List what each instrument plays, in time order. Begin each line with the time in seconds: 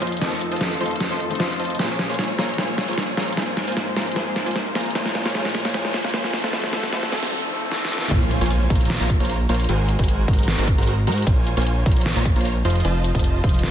0.01 string section F2 D#3 A4, supersaw synth F3 F4 C5 D#5 C6, closed hi-hat
0.07 closed hi-hat
0.12 closed hi-hat
0.17 grand piano F3 A3, closed hi-hat
0.21 supersaw synth F3 F4 C5 D#5 A5, grand piano C4 D#4 A4, snare, closed hi-hat
0.41 closed hi-hat
0.52 supersaw synth F3 F4 C5 D#5 A5, closed hi-hat
0.56 closed hi-hat
0.61 snare, closed hi-hat
0.80 grand piano F3 A3 C4 D#4 A4, supersaw synth F3 F4 C5 D#5 C6, closed hi-hat
0.86 closed hi-hat
0.91 closed hi-hat
0.96 closed hi-hat
1.00 snare, closed hi-hat
1.11 supersaw synth F3 F4 C5 D#5 C6
1.20 closed hi-hat
1.29 grand piano F3 A3 C4 D#4 C5, closed hi-hat
1.35 grand piano F3, closed hi-hat
1.39 supersaw synth F3 F4 C5 D#5 C6, grand piano A3 C4 D#4 F4, snare, closed hi-hat
1.59 supersaw synth F3 F4 C5 D#5 A5, closed hi-hat
1.65 closed hi-hat
1.70 closed hi-hat
1.75 grand piano F3 G#3, closed hi-hat
1.79 string section A#2 G#3 C#5, grand piano A#3 C#4 G#4, supersaw synth A#3 F4 C5 C#5 G#5, snare, closed hi-hat, riser
1.99 snare, closed hi-hat
2.10 supersaw synth A#3 F4 C5 C#5 G#5, closed hi-hat
2.14 closed hi-hat
2.19 snare, closed hi-hat
2.38 grand piano F3 G#3 A#3 C#4 G#4, supersaw synth A#3 F4 C5 C#5 A#5, snare, closed hi-hat
2.44 closed hi-hat
2.49 closed hi-hat
2.54 grand piano F3 G#3, closed hi-hat
2.58 grand piano A#3 C#4 G#4, supersaw synth A#3 F4 C5 C#5 G#5, snare, closed hi-hat
2.78 snare, closed hi-hat
2.88 supersaw synth A#3 F4 C5 C#5 G#5, closed hi-hat
2.93 closed hi-hat
2.98 snare, closed hi-hat
3.17 grand piano F3 G#3 A#3 C#4 G#4, supersaw synth A#3 F4 C5 C#5 A#5, snare, closed hi-hat
3.23 closed hi-hat
3.28 closed hi-hat
3.33 grand piano F3 G#3, closed hi-hat
3.37 string section G#2 C5, grand piano A#3 C4 G#4, supersaw synth A#3 F4 C5 G#5, snare, closed hi-hat
3.57 snare, closed hi-hat
3.67 supersaw synth A#3 F4 C5 G#5, closed hi-hat
3.72 closed hi-hat
3.77 snare, closed hi-hat
3.95 grand piano F3 G#3 A#3 C4 G#4, supersaw synth A#3 F4 C5 A#5, snare, closed hi-hat
4.02 closed hi-hat
4.07 closed hi-hat
4.12 grand piano F3 G#3, closed hi-hat
4.16 grand piano A#3 C4 G#4, supersaw synth A#3 F4 C5 G#5, snare, closed hi-hat
4.36 snare, closed hi-hat
4.46 supersaw synth A#3 F4 C5 G#5, closed hi-hat
4.51 closed hi-hat
4.56 snare, closed hi-hat
4.74 grand piano F3 G#3 A#3 C4 G#4, supersaw synth A#3 F4 C5 A#5, snare, closed hi-hat
4.81 closed hi-hat
4.86 closed hi-hat
4.90 grand piano F3 G#3, closed hi-hat
4.95 string section A#2 G#3 C#5, supersaw synth A#3 F4 C5 C#5 G#5, grand piano A#3 C#4 G#4, snare, closed hi-hat
5.06 snare
5.15 snare, closed hi-hat
5.25 supersaw synth A#3 F4 C5 C#5 G#5, snare, closed hi-hat
5.30 grand piano F3 G#3, closed hi-hat
5.35 supersaw synth A#3 F4 C5 C#5 G#5, grand piano A#3 C#4 G#4, snare, closed hi-hat
5.45 snare
5.55 snare, closed hi-hat
5.60 closed hi-hat
5.65 supersaw synth A#3 F4 C5 C#5 G#5, snare, closed hi-hat
5.70 grand piano F3 G#3, closed hi-hat
5.74 grand piano A#3 C#4 G#4, supersaw synth A#3 F4 C5 C#5 G#5, snare, closed hi-hat
5.85 snare
5.94 snare, closed hi-hat
6.04 supersaw synth A#3 F4 C5 C#5 G#5, snare, closed hi-hat
6.09 grand piano F3 G#3, closed hi-hat
6.14 supersaw synth A#3 F4 C5 C#5 G#5, grand piano A#3 C#4 G#4, snare, closed hi-hat
6.24 snare
6.33 string section F2 D#3 A4, snare, closed hi-hat
6.39 closed hi-hat
6.44 supersaw synth A3 F4 C5 A5, snare, closed hi-hat
6.49 grand piano F3 A3, closed hi-hat
6.53 supersaw synth A3 F4 C5 A5, grand piano C4 A4, snare, closed hi-hat, noise sweep
6.64 snare
6.71 grand piano F3 A3 C4, supersaw synth A3 F4 C5 A5, snare, closed hi-hat
6.75 grand piano A4
6.83 snare, closed hi-hat
6.88 grand piano F3 A3, closed hi-hat
6.92 supersaw synth A3 F4 C5 A5, grand piano C4 A4, snare, closed hi-hat
7.03 snare
7.11 grand piano F3 A3 C4, supersaw synth A3 F4 C5 A5, snare, closed hi-hat
7.15 grand piano A4, closed hi-hat
7.23 snare, closed hi-hat
7.27 grand piano F3 A3, closed hi-hat
7.33 grand piano C4 A4
7.50 grand piano F3 A3 C4 A4
7.70 grand piano F3 A3 C4 A4, snare
7.85 snare
7.89 grand piano F3 A3 C4 A4
7.98 snare
8.11 analog synth bass A#1, supersaw synth A#3 F4 C5 C#5 G#5, kick, closed hi-hat, crash, impact
8.31 closed hi-hat
8.41 analog synth bass A#1, supersaw synth A#3 F4 C5 C#5 G#5, closed hi-hat
8.46 closed hi-hat
8.51 closed hi-hat
8.70 analog synth bass A#1, supersaw synth A#3 F4 C5 C#5 A#5, kick, closed hi-hat
8.75 closed hi-hat
8.81 closed hi-hat
8.85 closed hi-hat
8.90 snare, closed hi-hat
9.00 analog synth bass A#1, supersaw synth A#3 F4 C5 C#5 A#5
9.10 kick, closed hi-hat
9.20 analog synth bass A#1, supersaw synth A#3 F4 C5 C#5 A#5, closed hi-hat
9.25 closed hi-hat
9.30 closed hi-hat
9.49 analog synth bass A#1, supersaw synth A#3 F4 C5 C#5 A#5, closed hi-hat
9.54 closed hi-hat
9.60 closed hi-hat
9.64 closed hi-hat
9.69 analog synth bass G#1, supersaw synth G#3 F#4 A#4 C5 G#5, closed hi-hat
9.89 closed hi-hat
9.99 analog synth bass G#1, supersaw synth G#3 F#4 A#4 C5 G#5, kick, closed hi-hat
10.04 closed hi-hat
10.08 closed hi-hat
10.28 analog synth bass G#1, supersaw synth G#3 F#4 A#4 C5 A#5, kick, closed hi-hat
10.33 closed hi-hat
10.39 closed hi-hat
10.43 closed hi-hat
10.48 snare, closed hi-hat
10.58 analog synth bass G#1, supersaw synth G#3 F#4 A#4 C5 A#5
10.68 kick, closed hi-hat
10.78 analog synth bass G#1, supersaw synth G#3 F#4 A#4 C5 A#5, closed hi-hat
10.83 closed hi-hat
10.87 closed hi-hat
11.07 analog synth bass G#2, supersaw synth G#3 F#4 A#4 C5 A#5, closed hi-hat
11.12 closed hi-hat
11.18 closed hi-hat
11.22 closed hi-hat
11.27 analog synth bass A#1, supersaw synth A#3 F4 C5 C#5 G#5, kick, closed hi-hat
11.47 closed hi-hat
11.57 analog synth bass A#1, supersaw synth A#3 F4 C5 C#5 G#5, closed hi-hat
11.62 closed hi-hat
11.67 closed hi-hat
11.86 analog synth bass A#1, supersaw synth A#3 F4 C5 C#5 A#5, kick, closed hi-hat
11.91 closed hi-hat
11.97 closed hi-hat
12.01 closed hi-hat
12.06 snare, closed hi-hat
12.16 analog synth bass A#1, supersaw synth A#3 F4 C5 C#5 A#5
12.25 kick, closed hi-hat
12.36 analog synth bass A#1, supersaw synth A#3 F4 C5 C#5 A#5, closed hi-hat
12.41 closed hi-hat
12.45 closed hi-hat
12.65 analog synth bass F1, supersaw synth F3 F4 C5 D#5 C6, closed hi-hat
12.70 closed hi-hat
12.75 closed hi-hat
12.80 closed hi-hat
12.85 analog synth bass F1, supersaw synth F3 F4 C5 D#5 A5, closed hi-hat
13.04 closed hi-hat
13.15 analog synth bass F1, supersaw synth F3 F4 C5 D#5 A5, kick, closed hi-hat
13.19 closed hi-hat
13.24 closed hi-hat
13.44 analog synth bass F1, supersaw synth F3 F4 C5 D#5 C6, kick, closed hi-hat
13.49 closed hi-hat
13.54 closed hi-hat
13.59 closed hi-hat
13.63 snare, closed hi-hat